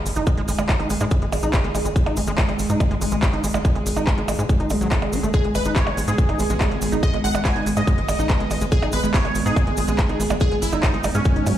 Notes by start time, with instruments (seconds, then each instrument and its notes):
Already playing: ambient pad G#3 G#4
0.06 analog synth bass G#1, open hi-hat, cabasa
0.16 analog synth bass G#1, acid bass D#4, closed hi-hat, cabasa
0.27 acid bass G#3, kick, closed hi-hat, percussion blips, cabasa
0.37 analog synth bass G#1, acid bass G#3, closed hi-hat
0.48 analog synth bass G#1, acid bass G#3, open hi-hat, cabasa
0.58 analog synth bass G#1, acid bass G#3, closed hi-hat, percussion blips, cabasa
0.69 kick, clap, closed hi-hat, cabasa
0.80 analog synth bass G#1, acid bass D#4, closed hi-hat
0.90 analog synth bass G#1, acid bass G#3, open hi-hat, cabasa
1.00 analog synth bass G#2, acid bass G#3, closed hi-hat, percussion blips, cabasa
1.11 acid bass G#3, kick, closed hi-hat, cabasa
1.22 analog synth bass G#1, acid bass G#3, closed hi-hat
1.32 analog synth bass G#1, open hi-hat, percussion blips, cabasa
1.43 analog synth bass A1, acid bass D#4, closed hi-hat, cabasa
1.53 acid bass G#3, kick, clap, closed hi-hat, cabasa
1.64 analog synth bass G#1, acid bass G#3, closed hi-hat
1.75 analog synth bass G#1, acid bass G#3, open hi-hat, percussion blips, cabasa
1.85 analog synth bass G#1, acid bass G#3, closed hi-hat, cabasa
1.96 kick, closed hi-hat, cabasa
2.06 analog synth bass G#1, acid bass D#4, closed hi-hat, percussion blips
2.17 analog synth bass G#1, acid bass G#3, open hi-hat, cabasa
2.27 analog synth bass G#1, acid bass G#3, closed hi-hat, cabasa
2.37 acid bass G#3, kick, clap, closed hi-hat, cabasa
2.49 analog synth bass G#1, acid bass G#3, closed hi-hat, percussion blips
2.59 analog synth bass G#1, open hi-hat, cabasa
2.69 analog synth bass G#2, acid bass D#4, closed hi-hat, cabasa
2.80 acid bass G#3, kick, closed hi-hat, percussion blips, cabasa
2.91 analog synth bass G#1, acid bass G#3, closed hi-hat
3.01 analog synth bass G#1, acid bass G#3, open hi-hat, cabasa
3.12 analog synth bass A1, acid bass G#3, closed hi-hat, cabasa
3.23 kick, clap, closed hi-hat, percussion blips, cabasa
3.33 analog synth bass G#1, acid bass D#4, closed hi-hat
3.44 analog synth bass G#1, acid bass G#3, open hi-hat, cabasa
3.54 analog synth bass G#1, acid bass G#3, closed hi-hat, percussion blips, cabasa
3.65 acid bass G#3, kick, closed hi-hat, cabasa
3.75 analog synth bass G#1, acid bass G#3, closed hi-hat
3.86 analog synth bass G#1, open hi-hat, cabasa
3.96 analog synth bass G#1, acid bass D#4, closed hi-hat, percussion blips, cabasa
4.07 acid bass G#3, kick, clap, closed hi-hat, cabasa
4.18 analog synth bass G#1, acid bass G#3, closed hi-hat
4.28 analog synth bass G#1, acid bass G#3, open hi-hat, percussion blips, cabasa
4.39 analog synth bass G#2, acid bass G#3, closed hi-hat, cabasa
4.49 kick, closed hi-hat, cabasa
4.60 analog synth bass G#1, acid bass D#4, closed hi-hat
4.70 analog synth bass G#1, acid bass F#3, open hi-hat, percussion blips, cabasa
4.81 analog synth bass A1, acid bass F#3, closed hi-hat, cabasa
4.91 acid bass A3, kick, clap, closed hi-hat, cabasa
5.02 analog synth bass G#1, acid bass G#3, closed hi-hat, percussion blips
5.13 analog synth bass G#1, acid bass D#4, open hi-hat, cabasa
5.23 analog synth bass G#1, acid bass A3, closed hi-hat, cabasa
5.33 acid bass G#3, ambient pad B3, supersaw synth G#4, kick, closed hi-hat, cabasa
5.44 analog synth bass G#1, acid bass G#3, closed hi-hat
5.55 analog synth bass G#1, supersaw synth B4, open hi-hat, percussion blips, cabasa
5.65 analog synth bass G#1, acid bass D#4, closed hi-hat, cabasa
5.76 acid bass G#3, supersaw synth C#5, kick, clap, closed hi-hat, cabasa
5.87 analog synth bass G#1, acid bass G#3, closed hi-hat, percussion blips
5.97 analog synth bass G#1, acid bass G#3, open hi-hat, cabasa
6.08 analog synth bass G#2, acid bass G#3, supersaw synth G#4, closed hi-hat, cabasa
6.18 kick, closed hi-hat, cabasa
6.29 analog synth bass G#1, acid bass D#4, closed hi-hat, percussion blips
6.39 analog synth bass G#1, acid bass G#3, open hi-hat, cabasa
6.50 analog synth bass A1, acid bass G#3, closed hi-hat, cabasa
6.61 acid bass G#3, kick, clap, closed hi-hat, percussion blips, cabasa
6.71 analog synth bass G#1, acid bass G#3, closed hi-hat
6.82 analog synth bass G#1, open hi-hat, cabasa
6.92 analog synth bass G#1, acid bass D#4, closed hi-hat, cabasa
7.03 acid bass G#3, supersaw synth D#5, kick, closed hi-hat, percussion blips, cabasa
7.13 analog synth bass G#1, acid bass G#3, closed hi-hat
7.24 analog synth bass G#1, acid bass G#3, supersaw synth F#5, open hi-hat, cabasa
7.35 analog synth bass G#1, acid bass G#3, closed hi-hat, percussion blips, cabasa
7.45 supersaw synth G#5, kick, clap, closed hi-hat, cabasa
7.56 analog synth bass G#1, acid bass D#4, closed hi-hat
7.66 analog synth bass G#1, acid bass G#3, open hi-hat, cabasa
7.77 analog synth bass G#2, acid bass G#3, supersaw synth D#5, closed hi-hat, percussion blips, cabasa
7.87 acid bass G#3, kick, closed hi-hat, cabasa
7.98 analog synth bass G#1, acid bass G#3, closed hi-hat
8.09 analog synth bass G#1, open hi-hat, percussion blips, cabasa
8.19 analog synth bass A1, acid bass D#4, closed hi-hat, cabasa
8.29 acid bass G#3, kick, clap, closed hi-hat, cabasa
8.40 analog synth bass G#1, acid bass G#3, closed hi-hat
8.51 analog synth bass G#1, acid bass G#3, open hi-hat, percussion blips, cabasa
8.61 analog synth bass G#1, acid bass G#3, closed hi-hat, cabasa
8.72 supersaw synth G#4, kick, closed hi-hat, cabasa
8.82 analog synth bass G#1, acid bass D#4, closed hi-hat, percussion blips
8.92 analog synth bass G#1, acid bass G#3, supersaw synth B4, open hi-hat, cabasa
9.04 analog synth bass G#1, acid bass G#3, closed hi-hat, cabasa
9.14 acid bass G#3, supersaw synth C#5, kick, clap, closed hi-hat, cabasa
9.25 analog synth bass G#1, acid bass G#3, closed hi-hat, percussion blips
9.35 analog synth bass G#1, open hi-hat, cabasa
9.46 analog synth bass G#2, acid bass D#4, supersaw synth G#4, closed hi-hat, cabasa
9.56 acid bass G#3, kick, closed hi-hat, percussion blips, cabasa
9.67 analog synth bass G#1, acid bass G#3, closed hi-hat
9.77 analog synth bass G#1, acid bass G#3, open hi-hat, cabasa
9.88 analog synth bass A1, acid bass G#3, closed hi-hat, cabasa
9.98 kick, clap, closed hi-hat, percussion blips, cabasa
10.09 analog synth bass G#1, acid bass D#4, closed hi-hat
10.20 analog synth bass G#1, acid bass G#3, open hi-hat, cabasa
10.30 analog synth bass G#1, acid bass G#3, closed hi-hat, percussion blips, cabasa
10.40 acid bass G#3, supersaw synth G#4, kick, closed hi-hat, cabasa
10.51 analog synth bass G#1, acid bass G#3, closed hi-hat
10.62 analog synth bass G#1, supersaw synth E4, open hi-hat, cabasa
10.72 analog synth bass G#1, acid bass D#4, closed hi-hat, percussion blips, cabasa
10.83 acid bass G#3, supersaw synth D#4, kick, clap, closed hi-hat, cabasa
10.94 analog synth bass G#1, acid bass G#3, closed hi-hat
11.04 analog synth bass G#1, acid bass G#3, open hi-hat, percussion blips, cabasa
11.14 analog synth bass G#2, acid bass G#3, supersaw synth C#4, closed hi-hat, cabasa
11.25 kick, closed hi-hat, cabasa
11.36 analog synth bass G#1, acid bass D#4, closed hi-hat
11.46 analog synth bass G#2, acid bass F#3, open hi-hat, percussion blips, cabasa